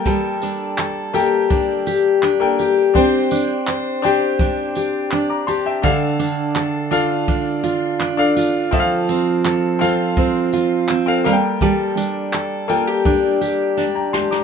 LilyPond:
<<
  \new Staff \with { instrumentName = "Grand piano" } { \time 4/4 \key g \dorian \tempo 4 = 83 << { r1 | r2. r16 <bes'' d'''>16 <a'' c'''>16 <e'' g''>16~ | <e'' g''>16 r2. r8. | r1 |
r2. r16 <g'' bes''>16 <a'' c'''>16 <bes'' d'''>16 | } \\ { <bes a' g''>4 r8 <bes a' g''>4 r8. <bes a' g''>8 r16 | <d' c'' g''>4 r8 <d' c'' g''>4 r4. | <d' a' f''>4 r8 <d' a' f''>4 r8. <d' a' f''>8 r16 | <c' a' e'' f''>4 r8 <c' a' f''>4 r8. <c' a' f''>16 <bes a' f'' g''>8~ |
<bes a' f'' g''>4 r8 <bes a' g''>4 r4. | } >> }
  \new Staff \with { instrumentName = "Steel-string acoustic guitar" } { \time 4/4 \key g \dorian <g a'>8 d'8 a'8 g'8 d'8 g'8 d'8 g'8 | <c' c''>8 d'8 c''8 g'8 d'8 g'8 d'8 g'8 | <d a'>8 d'8 a'8 f'8 d'8 f'8 d'8 f'8 | <f a'>8 c'8 a'8 f'8 c'8 f'8 c'8 g8 |
<g a'>8 d'8 a'8 f'16 g'16 d'8 g'8 d'8 g'8 | }
  \new DrumStaff \with { instrumentName = "Drums" } \drummode { \time 4/4 bd8 tamb8 hc8 tamb8 bd8 tamb8 hc8 tamb8 | bd8 tamb8 hc8 tamb8 bd8 tamb8 hc8 tamb8 | bd8 tamb8 hc8 tamb8 bd8 tamb8 hc8 tamb8 | bd8 tamb8 hc8 tamb8 bd8 tamb8 hc8 tamb8 |
bd8 tamb8 hc8 tamb8 bd8 tamb8 sn8 sn16 sn16 | }
>>